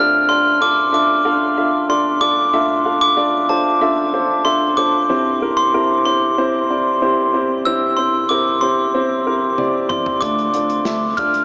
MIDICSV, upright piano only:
0, 0, Header, 1, 2, 480
1, 0, Start_track
1, 0, Key_signature, -1, "minor"
1, 0, Tempo, 640342
1, 1899, Time_signature, 4, 2, 24, 8
1, 8579, End_track
2, 0, Start_track
2, 0, Title_t, "Upright piano"
2, 0, Program_c, 0, 0
2, 0, Note_on_c, 0, 45, 53
2, 0, Note_on_c, 0, 62, 81
2, 0, Note_on_c, 0, 65, 71
2, 0, Note_on_c, 0, 69, 71
2, 0, Note_on_c, 0, 72, 47
2, 0, Note_on_c, 0, 74, 84
2, 91, Note_off_c, 0, 72, 0
2, 129, Control_c, 0, 64, 127
2, 201, Note_off_c, 0, 65, 0
2, 202, Note_off_c, 0, 62, 0
2, 203, Note_off_c, 0, 69, 0
2, 203, Note_off_c, 0, 74, 0
2, 216, Note_on_c, 0, 62, 58
2, 218, Note_on_c, 0, 65, 52
2, 220, Note_on_c, 0, 69, 49
2, 221, Note_on_c, 0, 74, 60
2, 441, Note_off_c, 0, 62, 0
2, 442, Note_off_c, 0, 65, 0
2, 442, Note_off_c, 0, 69, 0
2, 443, Note_off_c, 0, 74, 0
2, 454, Note_on_c, 0, 62, 62
2, 454, Note_on_c, 0, 65, 53
2, 456, Note_on_c, 0, 69, 58
2, 456, Note_on_c, 0, 74, 68
2, 669, Note_off_c, 0, 45, 0
2, 680, Note_off_c, 0, 62, 0
2, 680, Note_off_c, 0, 65, 0
2, 680, Note_off_c, 0, 74, 0
2, 681, Note_off_c, 0, 69, 0
2, 692, Note_on_c, 0, 62, 60
2, 694, Note_on_c, 0, 65, 55
2, 694, Note_on_c, 0, 69, 54
2, 695, Note_on_c, 0, 76, 65
2, 918, Note_off_c, 0, 62, 0
2, 920, Note_off_c, 0, 65, 0
2, 920, Note_off_c, 0, 69, 0
2, 920, Note_off_c, 0, 76, 0
2, 936, Note_on_c, 0, 69, 70
2, 937, Note_on_c, 0, 65, 69
2, 938, Note_on_c, 0, 62, 77
2, 940, Note_on_c, 0, 77, 83
2, 1161, Note_off_c, 0, 62, 0
2, 1161, Note_off_c, 0, 65, 0
2, 1161, Note_off_c, 0, 69, 0
2, 1162, Note_off_c, 0, 77, 0
2, 1180, Note_on_c, 0, 62, 63
2, 1181, Note_on_c, 0, 65, 60
2, 1181, Note_on_c, 0, 76, 68
2, 1184, Note_on_c, 0, 69, 53
2, 1402, Note_off_c, 0, 62, 0
2, 1403, Note_off_c, 0, 65, 0
2, 1403, Note_off_c, 0, 76, 0
2, 1404, Note_off_c, 0, 69, 0
2, 1417, Note_on_c, 0, 65, 58
2, 1419, Note_on_c, 0, 62, 58
2, 1419, Note_on_c, 0, 74, 69
2, 1420, Note_on_c, 0, 69, 54
2, 1641, Note_off_c, 0, 65, 0
2, 1642, Note_off_c, 0, 62, 0
2, 1642, Note_off_c, 0, 74, 0
2, 1643, Note_off_c, 0, 69, 0
2, 1655, Note_on_c, 0, 62, 61
2, 1655, Note_on_c, 0, 65, 54
2, 1657, Note_on_c, 0, 69, 52
2, 1659, Note_on_c, 0, 74, 64
2, 1880, Note_off_c, 0, 62, 0
2, 1880, Note_off_c, 0, 65, 0
2, 1881, Note_off_c, 0, 69, 0
2, 1882, Note_off_c, 0, 74, 0
2, 1899, Note_on_c, 0, 62, 78
2, 1900, Note_on_c, 0, 65, 69
2, 1901, Note_on_c, 0, 76, 86
2, 1902, Note_on_c, 0, 69, 73
2, 1903, Note_on_c, 0, 45, 53
2, 2122, Note_off_c, 0, 62, 0
2, 2123, Note_off_c, 0, 65, 0
2, 2123, Note_off_c, 0, 76, 0
2, 2124, Note_off_c, 0, 69, 0
2, 2137, Note_on_c, 0, 62, 61
2, 2137, Note_on_c, 0, 65, 54
2, 2139, Note_on_c, 0, 77, 68
2, 2141, Note_on_c, 0, 69, 57
2, 2361, Note_off_c, 0, 62, 0
2, 2361, Note_off_c, 0, 65, 0
2, 2362, Note_off_c, 0, 77, 0
2, 2363, Note_off_c, 0, 69, 0
2, 2375, Note_on_c, 0, 62, 62
2, 2375, Note_on_c, 0, 65, 57
2, 2376, Note_on_c, 0, 69, 57
2, 2376, Note_on_c, 0, 74, 67
2, 2591, Note_off_c, 0, 45, 0
2, 2600, Note_off_c, 0, 62, 0
2, 2600, Note_off_c, 0, 65, 0
2, 2601, Note_off_c, 0, 69, 0
2, 2601, Note_off_c, 0, 74, 0
2, 2617, Note_on_c, 0, 65, 59
2, 2618, Note_on_c, 0, 62, 63
2, 2619, Note_on_c, 0, 69, 53
2, 2621, Note_on_c, 0, 72, 68
2, 2841, Note_off_c, 0, 65, 0
2, 2842, Note_off_c, 0, 62, 0
2, 2842, Note_off_c, 0, 69, 0
2, 2843, Note_off_c, 0, 72, 0
2, 2856, Note_on_c, 0, 62, 77
2, 2859, Note_on_c, 0, 65, 68
2, 2859, Note_on_c, 0, 76, 87
2, 2860, Note_on_c, 0, 69, 72
2, 3081, Note_off_c, 0, 62, 0
2, 3082, Note_off_c, 0, 65, 0
2, 3082, Note_off_c, 0, 76, 0
2, 3083, Note_off_c, 0, 69, 0
2, 3099, Note_on_c, 0, 62, 59
2, 3099, Note_on_c, 0, 69, 52
2, 3100, Note_on_c, 0, 65, 59
2, 3102, Note_on_c, 0, 72, 70
2, 3322, Note_off_c, 0, 62, 0
2, 3322, Note_off_c, 0, 69, 0
2, 3323, Note_off_c, 0, 65, 0
2, 3324, Note_off_c, 0, 72, 0
2, 3335, Note_on_c, 0, 69, 57
2, 3336, Note_on_c, 0, 62, 63
2, 3336, Note_on_c, 0, 65, 57
2, 3338, Note_on_c, 0, 76, 69
2, 3560, Note_off_c, 0, 69, 0
2, 3561, Note_off_c, 0, 62, 0
2, 3561, Note_off_c, 0, 65, 0
2, 3562, Note_off_c, 0, 76, 0
2, 3579, Note_on_c, 0, 65, 56
2, 3580, Note_on_c, 0, 62, 60
2, 3580, Note_on_c, 0, 69, 54
2, 3582, Note_on_c, 0, 72, 68
2, 3803, Note_off_c, 0, 62, 0
2, 3803, Note_off_c, 0, 65, 0
2, 3803, Note_off_c, 0, 69, 0
2, 3804, Note_off_c, 0, 72, 0
2, 3818, Note_on_c, 0, 60, 84
2, 3819, Note_on_c, 0, 43, 50
2, 3820, Note_on_c, 0, 72, 89
2, 3821, Note_on_c, 0, 67, 69
2, 3822, Note_on_c, 0, 64, 74
2, 3827, Control_c, 0, 64, 0
2, 3963, Control_c, 0, 64, 127
2, 4042, Note_off_c, 0, 60, 0
2, 4043, Note_off_c, 0, 72, 0
2, 4044, Note_off_c, 0, 64, 0
2, 4044, Note_off_c, 0, 67, 0
2, 4062, Note_on_c, 0, 60, 58
2, 4062, Note_on_c, 0, 64, 55
2, 4065, Note_on_c, 0, 67, 55
2, 4065, Note_on_c, 0, 70, 67
2, 4284, Note_off_c, 0, 60, 0
2, 4284, Note_off_c, 0, 64, 0
2, 4285, Note_off_c, 0, 67, 0
2, 4285, Note_off_c, 0, 70, 0
2, 4303, Note_on_c, 0, 64, 55
2, 4304, Note_on_c, 0, 60, 64
2, 4304, Note_on_c, 0, 70, 70
2, 4305, Note_on_c, 0, 67, 60
2, 4510, Note_off_c, 0, 43, 0
2, 4524, Note_off_c, 0, 64, 0
2, 4525, Note_off_c, 0, 60, 0
2, 4525, Note_off_c, 0, 67, 0
2, 4525, Note_off_c, 0, 70, 0
2, 4542, Note_on_c, 0, 60, 62
2, 4543, Note_on_c, 0, 64, 58
2, 4543, Note_on_c, 0, 67, 58
2, 4544, Note_on_c, 0, 72, 70
2, 4764, Note_off_c, 0, 60, 0
2, 4764, Note_off_c, 0, 64, 0
2, 4764, Note_off_c, 0, 67, 0
2, 4765, Note_off_c, 0, 72, 0
2, 4782, Note_on_c, 0, 67, 71
2, 4783, Note_on_c, 0, 60, 80
2, 4783, Note_on_c, 0, 64, 72
2, 4784, Note_on_c, 0, 72, 90
2, 5004, Note_off_c, 0, 67, 0
2, 5005, Note_off_c, 0, 60, 0
2, 5005, Note_off_c, 0, 64, 0
2, 5005, Note_off_c, 0, 72, 0
2, 5021, Note_on_c, 0, 60, 61
2, 5023, Note_on_c, 0, 64, 58
2, 5023, Note_on_c, 0, 67, 52
2, 5024, Note_on_c, 0, 74, 66
2, 5244, Note_off_c, 0, 60, 0
2, 5244, Note_off_c, 0, 64, 0
2, 5245, Note_off_c, 0, 67, 0
2, 5245, Note_off_c, 0, 74, 0
2, 5259, Note_on_c, 0, 64, 73
2, 5260, Note_on_c, 0, 60, 73
2, 5260, Note_on_c, 0, 67, 71
2, 5263, Note_on_c, 0, 72, 81
2, 5482, Note_off_c, 0, 64, 0
2, 5483, Note_off_c, 0, 60, 0
2, 5483, Note_off_c, 0, 67, 0
2, 5485, Note_off_c, 0, 72, 0
2, 5500, Note_on_c, 0, 60, 70
2, 5500, Note_on_c, 0, 64, 63
2, 5501, Note_on_c, 0, 67, 65
2, 5503, Note_on_c, 0, 72, 72
2, 5723, Note_off_c, 0, 60, 0
2, 5723, Note_off_c, 0, 64, 0
2, 5724, Note_off_c, 0, 67, 0
2, 5725, Note_off_c, 0, 72, 0
2, 5743, Note_on_c, 0, 60, 80
2, 5744, Note_on_c, 0, 43, 54
2, 5745, Note_on_c, 0, 64, 77
2, 5746, Note_on_c, 0, 67, 73
2, 5746, Note_on_c, 0, 72, 80
2, 5965, Note_off_c, 0, 60, 0
2, 5966, Note_off_c, 0, 64, 0
2, 5966, Note_off_c, 0, 67, 0
2, 5966, Note_off_c, 0, 72, 0
2, 5985, Note_on_c, 0, 60, 60
2, 5986, Note_on_c, 0, 72, 66
2, 5987, Note_on_c, 0, 67, 53
2, 5988, Note_on_c, 0, 64, 53
2, 6206, Note_off_c, 0, 60, 0
2, 6206, Note_off_c, 0, 72, 0
2, 6207, Note_off_c, 0, 64, 0
2, 6207, Note_off_c, 0, 67, 0
2, 6223, Note_on_c, 0, 64, 54
2, 6225, Note_on_c, 0, 67, 57
2, 6226, Note_on_c, 0, 60, 61
2, 6226, Note_on_c, 0, 70, 66
2, 6432, Note_off_c, 0, 43, 0
2, 6445, Note_off_c, 0, 64, 0
2, 6446, Note_off_c, 0, 60, 0
2, 6446, Note_off_c, 0, 67, 0
2, 6446, Note_off_c, 0, 70, 0
2, 6462, Note_on_c, 0, 60, 62
2, 6462, Note_on_c, 0, 64, 58
2, 6463, Note_on_c, 0, 67, 57
2, 6466, Note_on_c, 0, 72, 67
2, 6684, Note_off_c, 0, 60, 0
2, 6684, Note_off_c, 0, 64, 0
2, 6685, Note_off_c, 0, 67, 0
2, 6686, Note_off_c, 0, 72, 0
2, 6704, Note_on_c, 0, 60, 77
2, 6706, Note_on_c, 0, 64, 71
2, 6706, Note_on_c, 0, 67, 65
2, 6706, Note_on_c, 0, 72, 81
2, 6925, Note_off_c, 0, 60, 0
2, 6926, Note_off_c, 0, 64, 0
2, 6926, Note_off_c, 0, 72, 0
2, 6927, Note_off_c, 0, 67, 0
2, 6944, Note_on_c, 0, 60, 59
2, 6946, Note_on_c, 0, 64, 56
2, 6947, Note_on_c, 0, 70, 62
2, 6948, Note_on_c, 0, 67, 54
2, 7166, Note_off_c, 0, 60, 0
2, 7167, Note_off_c, 0, 64, 0
2, 7167, Note_off_c, 0, 67, 0
2, 7167, Note_off_c, 0, 70, 0
2, 7180, Note_on_c, 0, 60, 73
2, 7183, Note_on_c, 0, 64, 66
2, 7183, Note_on_c, 0, 67, 68
2, 7185, Note_on_c, 0, 74, 78
2, 7403, Note_off_c, 0, 60, 0
2, 7405, Note_off_c, 0, 64, 0
2, 7405, Note_off_c, 0, 67, 0
2, 7406, Note_off_c, 0, 74, 0
2, 7421, Note_on_c, 0, 60, 55
2, 7424, Note_on_c, 0, 64, 53
2, 7426, Note_on_c, 0, 67, 54
2, 7427, Note_on_c, 0, 74, 59
2, 7644, Note_off_c, 0, 60, 0
2, 7645, Note_off_c, 0, 64, 0
2, 7646, Note_off_c, 0, 67, 0
2, 7647, Note_off_c, 0, 74, 0
2, 7663, Note_on_c, 0, 62, 82
2, 7664, Note_on_c, 0, 65, 69
2, 7664, Note_on_c, 0, 69, 71
2, 7665, Note_on_c, 0, 45, 54
2, 7665, Note_on_c, 0, 74, 87
2, 7669, Control_c, 0, 64, 0
2, 7798, Control_c, 0, 64, 127
2, 7885, Note_off_c, 0, 62, 0
2, 7885, Note_off_c, 0, 65, 0
2, 7886, Note_off_c, 0, 69, 0
2, 7886, Note_off_c, 0, 74, 0
2, 7903, Note_on_c, 0, 65, 54
2, 7904, Note_on_c, 0, 62, 56
2, 7905, Note_on_c, 0, 74, 61
2, 7906, Note_on_c, 0, 69, 55
2, 8125, Note_off_c, 0, 65, 0
2, 8126, Note_off_c, 0, 62, 0
2, 8126, Note_off_c, 0, 69, 0
2, 8126, Note_off_c, 0, 74, 0
2, 8138, Note_on_c, 0, 62, 63
2, 8138, Note_on_c, 0, 69, 59
2, 8140, Note_on_c, 0, 65, 60
2, 8142, Note_on_c, 0, 76, 69
2, 8353, Note_off_c, 0, 45, 0
2, 8362, Note_off_c, 0, 62, 0
2, 8362, Note_off_c, 0, 69, 0
2, 8364, Note_off_c, 0, 65, 0
2, 8364, Note_off_c, 0, 76, 0
2, 8384, Note_on_c, 0, 65, 58
2, 8386, Note_on_c, 0, 62, 60
2, 8387, Note_on_c, 0, 69, 59
2, 8388, Note_on_c, 0, 74, 69
2, 8579, Note_off_c, 0, 62, 0
2, 8579, Note_off_c, 0, 65, 0
2, 8579, Note_off_c, 0, 69, 0
2, 8579, Note_off_c, 0, 74, 0
2, 8579, End_track
0, 0, End_of_file